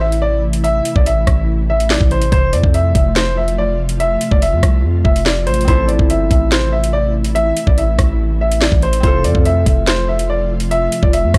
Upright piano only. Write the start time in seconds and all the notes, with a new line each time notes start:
0.01 E5
0.22 D5
0.64 E5
0.96 D5
1.07 E5
1.70 E5
1.90 D5
2.12 C5
2.32 C5
2.53 D5
2.74 E5
2.95 E5
3.16 C5
3.37 E5
3.58 D5
4.00 E5
4.31 D5
4.42 E5
5.04 E5
5.26 D5
5.47 C5
5.68 C5
5.88 D5
6.10 E5
6.31 E5
6.52 C5
6.72 E5
6.93 D5
7.35 E5
7.67 D5
7.78 E5
8.41 E5
8.61 D5
8.83 C5
9.04 C5
9.24 D5
9.46 E5
9.67 E5
9.87 C5
10.09 E5
10.30 D5
10.71 E5
11.03 D5
11.13 E5